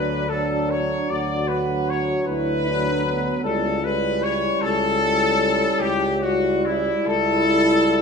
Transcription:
0.00 0.96 D2 medium
0.00 0.28 F#3 medium
0.00 0.28 D4 medium
0.00 1.06 D4 medium
0.00 0.30 B4 loud
0.29 1.47 F#3 medium
0.29 1.47 D4 medium
0.29 0.70 A4 medium
0.70 1.10 C#5 medium
1.09 2.13 D2 medium
1.09 2.27 F#4 medium
1.09 1.49 D5 medium
1.48 2.63 F#3 medium
1.48 2.63 D4 medium
1.48 1.88 B4 medium
1.89 2.27 C#5 medium
2.26 3.30 D2 medium
2.26 2.65 E4 medium
2.26 3.41 B4 medium
2.65 3.42 F#3 medium
2.65 3.05 D4 medium
2.65 3.43 D4 medium
3.05 3.44 B3 medium
3.43 4.48 C#2 medium
3.43 3.82 G3 medium
3.43 6.88 C#4 medium
3.43 3.83 E4 medium
3.43 3.82 A4 medium
3.83 4.99 G3 medium
3.83 4.99 E4 medium
3.83 4.23 B4 medium
4.23 4.62 C#5 medium
4.62 5.65 C#2 medium
4.62 5.79 A4 loud
5.02 6.03 G3 medium
5.02 6.02 E4 medium
5.80 6.91 C#2 medium
5.80 6.20 G4 loud
6.19 7.45 G3 medium
6.19 7.44 E4 medium
6.19 6.62 F#4 medium
6.65 7.07 E4 medium
7.05 8.02 C#2 medium
7.05 8.02 E4 medium
7.05 8.02 A4 loud
7.47 8.02 G3 medium
7.47 8.02 E4 medium

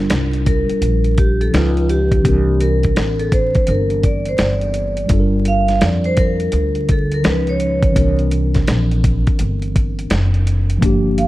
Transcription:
0.00 1.48 G3 medium
0.00 1.49 D4 medium
0.00 1.50 F4 medium
0.00 1.51 A#4 medium
0.10 0.66 C2 loud
0.10 snare medium
0.10 closed hi-hat loud
0.33 closed hi-hat soft
0.46 1.20 A#4 medium
0.46 kick medium
0.46 closed hi-hat medium
0.69 muted upright bass stroke soft
0.69 closed hi-hat soft
0.82 1.49 A#1 medium
0.82 closed hi-hat medium
1.04 closed hi-hat soft
1.18 1.41 G4 medium
1.18 kick loud
1.18 closed hi-hat medium
1.41 1.54 A4 medium
1.41 closed hi-hat soft
1.51 2.21 C#2 loud
1.51 2.23 F3 medium
1.51 2.24 C#4 medium
1.51 2.25 D#4 medium
1.51 1.90 F4 medium
1.51 2.25 B4 medium
1.51 snare loud
1.51 closed hi-hat medium
1.77 closed hi-hat soft
1.89 2.63 G4 medium
1.89 closed hi-hat medium
2.12 kick loud
2.12 closed hi-hat soft
2.22 2.92 C2 loud
2.22 5.05 E3 medium
2.22 5.06 C4 medium
2.22 kick loud
2.22 closed hi-hat loud
2.26 5.07 D4 medium
2.26 5.08 A#4 medium
2.60 3.21 A#4 medium
2.60 closed hi-hat medium
2.83 kick medium
2.83 closed hi-hat soft
2.96 3.52 A1 medium
2.96 snare loud
2.96 closed hi-hat medium
3.19 3.25 A4 medium
3.19 closed hi-hat soft
3.32 3.69 C5 medium
3.32 kick loud
3.32 closed hi-hat medium
3.55 muted upright bass stroke soft
3.55 kick medium
3.55 closed hi-hat soft
3.67 4.36 G1 medium
3.67 4.05 A#4 medium
3.67 closed hi-hat medium
3.90 closed hi-hat soft
4.03 4.27 D5 medium
4.03 kick medium
4.03 closed hi-hat medium
4.25 4.34 C5 medium
4.25 closed hi-hat soft
4.38 5.07 G1 medium
4.38 5.07 D5 medium
4.38 snare loud
4.38 closed hi-hat medium
4.61 closed hi-hat soft
4.74 closed hi-hat medium
4.97 closed hi-hat soft
5.06 7.18 G3 medium
5.06 7.20 D4 medium
5.06 kick loud
5.06 closed hi-hat loud
5.10 5.78 G1 loud
5.10 7.21 F4 medium
5.10 5.20 A4 medium
5.20 7.25 A#4 medium
5.45 5.80 F5 loud
5.45 closed hi-hat medium
5.68 snare soft
5.68 closed hi-hat soft
5.81 6.50 F2 medium
5.81 6.06 D5 medium
5.81 snare loud
5.81 closed hi-hat medium
6.04 6.18 C5 loud
6.04 closed hi-hat soft
6.17 6.91 A#4 medium
6.17 kick medium
6.17 closed hi-hat medium
6.40 closed hi-hat soft
6.52 7.21 D2 loud
6.52 closed hi-hat medium
6.75 closed hi-hat soft
6.89 7.14 A4 medium
6.89 kick medium
6.89 closed hi-hat medium
7.12 7.26 A#4 medium
7.12 closed hi-hat soft
7.22 7.93 C#2 medium
7.22 7.32 E3 soft
7.22 7.95 C#4 soft
7.22 7.96 D#4 medium
7.22 7.97 B4 medium
7.22 snare loud
7.22 closed hi-hat medium
7.27 7.98 F3 medium
7.27 7.49 B4 medium
7.47 8.16 C#5 medium
7.47 closed hi-hat soft
7.60 closed hi-hat medium
7.83 kick loud
7.83 closed hi-hat medium
7.92 10.75 E3 medium
7.92 10.77 C4 medium
7.96 8.64 C2 loud
7.96 10.78 D4 medium
7.96 10.79 A#4 medium
7.96 kick loud
7.96 closed hi-hat loud
8.19 closed hi-hat soft
8.31 closed hi-hat medium
8.55 kick medium
8.55 snare soft
8.55 closed hi-hat medium
8.68 9.24 A#1 medium
8.68 snare medium
8.68 closed hi-hat medium
8.91 closed hi-hat soft
9.04 kick loud
9.04 closed hi-hat medium
9.27 kick medium
9.27 closed hi-hat soft
9.39 10.07 G1 medium
9.39 closed hi-hat loud
9.62 closed hi-hat soft
9.76 kick medium
9.76 closed hi-hat medium
9.99 closed hi-hat soft
10.10 10.78 F#1 medium
10.10 snare loud
10.10 closed hi-hat medium
10.34 closed hi-hat soft
10.47 closed hi-hat medium
10.70 closed hi-hat medium
10.78 11.28 F3 medium
10.78 11.28 A#3 medium
10.78 kick loud
10.83 11.28 G1 medium
10.83 11.28 D4 medium
10.83 11.28 G4 medium
10.83 closed hi-hat loud
11.18 11.28 F5 medium
11.18 closed hi-hat medium

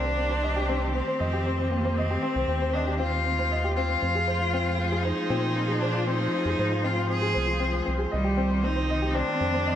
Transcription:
0.00 1.02 C2 loud
0.00 4.03 D#3 medium
0.00 0.56 A#3 medium
0.00 0.91 D4 loud
0.00 4.02 G4 medium
0.00 1.54 D6 medium
0.05 0.12 C4 medium
0.17 0.30 C4 medium
0.17 5.18 C4 medium
0.30 0.43 C5 medium
0.30 9.75 C5 medium
0.43 0.55 D#5 medium
0.56 0.68 G4 medium
0.69 0.81 C4 loud
0.82 0.89 C4 medium
0.94 1.72 C4 medium
0.94 1.07 C4 medium
1.08 1.20 C5 medium
1.20 2.18 F2 loud
1.20 1.32 D#5 medium
1.33 1.45 G4 medium
1.46 1.57 C4 medium
1.59 1.66 C4 medium
1.70 1.98 A#3 medium
1.70 1.84 C4 medium
1.85 1.97 C5 medium
1.96 2.75 C4 loud
1.96 2.10 D#5 medium
2.10 2.22 G4 medium
2.22 2.35 C4 loud
2.36 2.45 C2 medium
2.36 2.43 C4 medium
2.48 3.97 D#2 loud
2.48 2.61 C4 medium
2.62 2.74 C5 medium
2.73 2.98 D4 medium
2.73 2.87 D#5 medium
2.87 2.99 G4 medium
2.99 3.11 C4 loud
2.99 3.72 F4 loud
3.12 3.20 C4 medium
3.26 3.38 C4 medium
3.39 3.51 C5 medium
3.51 3.63 D#5 medium
3.64 3.76 G4 medium
3.75 3.88 C4 loud
3.75 5.04 F4 loud
3.89 3.97 C4 medium
4.01 5.13 F2 loud
4.01 8.12 F3 medium
4.01 4.14 C4 medium
4.13 9.75 F4 medium
4.13 8.12 G#4 medium
4.13 4.27 G#4 medium
4.28 4.40 C5 medium
4.42 4.53 F4 medium
4.54 4.65 C4 loud
4.66 4.74 C4 medium
4.79 4.91 C4 medium
4.92 5.04 G#4 medium
5.03 5.81 D#4 loud
5.03 5.17 C5 medium
5.17 5.30 F4 medium
5.30 6.28 A#2 loud
5.30 5.41 C4 loud
5.43 5.50 C4 medium
5.55 5.68 C4 medium
5.68 5.81 G#4 medium
5.80 6.08 D4 loud
5.80 5.94 C5 medium
5.95 6.07 F4 medium
6.06 6.19 C4 loud
6.06 6.86 D#4 loud
6.20 6.27 C4 medium
6.33 6.45 C4 medium
6.45 6.55 F2 medium
6.45 6.58 G#4 medium
6.59 7.35 G#2 loud
6.59 6.71 C5 medium
6.72 6.84 F4 medium
6.84 6.95 C4 loud
6.84 7.09 F4 loud
6.97 7.04 C4 medium
7.10 7.22 C4 medium
7.10 7.83 G#4 loud
7.22 7.35 G#4 medium
7.34 7.82 C2 loud
7.34 7.47 C5 medium
7.47 7.60 F4 medium
7.60 7.71 C4 medium
7.73 7.81 C4 medium
7.85 8.06 C2 loud
7.85 7.98 C4 medium
7.98 8.11 G#4 medium
8.12 9.23 C2 loud
8.12 9.75 D#3 loud
8.12 8.66 G3 loud
8.12 8.24 D#5 medium
8.24 8.37 G4 medium
8.37 8.49 C4 loud
8.37 9.75 C4 medium
8.51 8.58 C4 medium
8.64 8.76 C4 medium
8.64 9.16 D#4 loud
8.76 8.88 C5 medium
8.90 9.75 G4 medium
8.90 9.02 D#5 medium
9.02 9.14 G4 medium
9.15 9.26 C4 loud
9.15 9.75 D4 loud
9.28 9.35 C4 medium
9.41 9.75 F2 loud
9.41 9.53 C4 medium
9.54 9.66 C5 medium
9.66 9.75 D#5 medium

